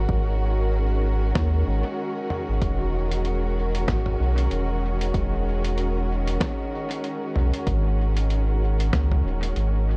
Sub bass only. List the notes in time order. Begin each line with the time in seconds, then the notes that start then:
0.09 G#1
1.35 D#2
1.68 G#1
2.49 G#1
2.62 E1
3.88 G#1
4.20 B1
4.52 E1
5.14 E1
7.36 B1
7.67 G#1
8.93 C#2
9.25 D#1
9.56 G#1